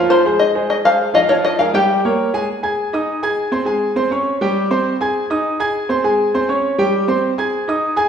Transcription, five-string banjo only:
0.10 C5 C6
0.39 D#5
0.70 D#5
0.85 F5
1.15 D#5
1.29 C#5
1.45 D#5
1.59 F5
1.75 G4 G5

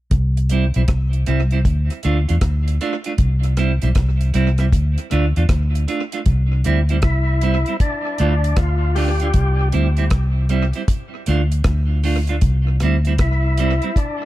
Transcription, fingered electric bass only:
0.12 C2
0.76 B1
0.89 C2
1.28 C2
1.66 D2
2.05 D2
2.30 E2
2.42 D2
3.19 C2
3.83 B1
3.96 C2
4.35 C2
4.73 D2
5.12 D2
5.37 E2
5.50 D2
6.27 C2
6.66 D2
7.04 C2
8.20 D2
8.57 D2
9.35 C2
9.74 D2
10.12 C2
11.28 D2
11.65 D2
12.42 C2
12.82 D2
13.20 C2

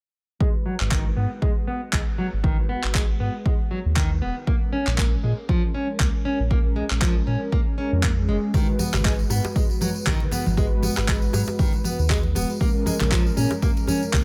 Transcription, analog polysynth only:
0.41 F#4
0.80 G#3 F#4 B4
2.44 B4
2.84 G#3 F#4 B4
4.48 C#4
4.87 G#3 C#4 A#4
6.51 G#3 C#4 A#4
6.91 G#3 C#4 A#4
7.78 G#3 C#4 A#4
8.17 G#3 C#4 G#4
8.54 G#3 B4
8.94 G#3 F#4 B4
10.58 G#3 F#4 B4
10.97 G#3 F#4 B4
12.61 G#3 C#4 A#4
13.01 G#3 C#4 A#4

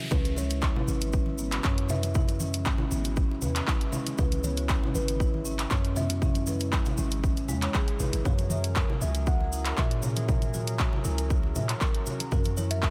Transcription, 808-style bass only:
0.12 C#2
0.88 G#1
1.65 F#2
2.91 G#1
3.42 E2
4.19 C#2
4.95 G#1
5.71 F#2
6.98 G#1
7.49 E2
8.00 G#1
8.13 G#1
8.25 F#2
9.01 C#2
9.78 A#2
11.05 C#2
11.56 A#2
12.32 F#2

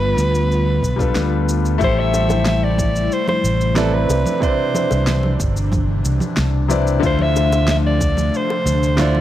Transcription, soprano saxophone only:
Already playing: B4
1.84 C5
2.00 E5
2.48 E5
2.64 D5
3.13 C5
3.29 C5
3.77 A4
3.94 B4
4.43 C5
7.06 C5
7.22 E5
7.71 E5
7.87 D5
8.37 C5
9.00 D5

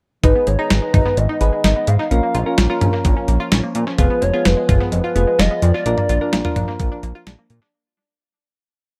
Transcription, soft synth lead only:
0.23 B4
0.47 C#5
0.70 B4
1.17 D#5
1.64 D#5
1.88 F5
3.99 B4
4.22 C#5
4.46 B4
4.92 B4
5.39 D#5
5.63 D5

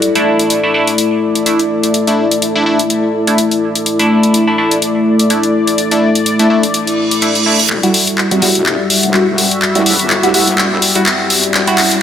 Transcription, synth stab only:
0.15 A3 D4 E4
0.63 A3 D4 E4
0.74 A3 D4 E4
1.46 A3 D4 E4
2.07 A3 D4 E4
2.55 A3 D4 E4
2.66 A3 D4 E4
3.27 A3 D4 E4
3.99 A3 D4 E4
4.47 A3 D4 E4
4.58 A3 D4 E4
5.30 A3 D4 E4
5.91 A3 D4 E4
6.39 A3 D4 E4
6.50 A3 D4 E4
7.22 A3 D4 E4
7.46 A3 D4 E4
7.83 G3 E4 F#4
8.31 G3 E4 F#4
8.42 G3 E4 F#4
9.14 G3 E4 F#4
9.75 G3 E4 F#4
10.23 G3 E4 F#4
10.34 G3 E4 F#4
10.95 G3 E4 F#4
11.67 G3 E4 F#4

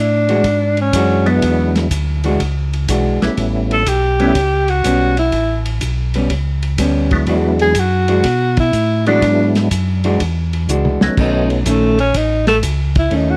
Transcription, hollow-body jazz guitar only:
0.29 E3 G#3 D4 F#4
0.94 E3 G#3 D4 F#4
2.24 E3 G#3 D4 F#4
2.89 E3 G#3 D4 F#4
4.20 G3 B3 C#4
4.84 G3 B3 C#4
6.15 G3 B3 C#4
6.79 G3 B3 C#4
7.28 E3 G#3 D4 F#4
8.09 E3 G#3 D4 F#4
9.07 E3 G#3 D4 F#4
10.05 E3 G#3 D4 F#4
10.69 E3 G#3 D4 F#4
11.18 D#3 A3 C#4
11.66 D#3 A3 C#4
13.11 D#3 A3 C#4

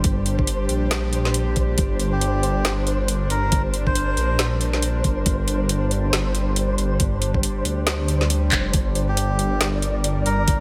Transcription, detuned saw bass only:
Already playing: G1
0.69 A#1
1.78 G1
2.65 G1
3.30 G1
4.17 A#1
5.04 G1
5.26 G1
6.13 G1
6.78 G1
7.65 D2
8.52 F1
8.74 G1
9.61 G1
10.26 G1

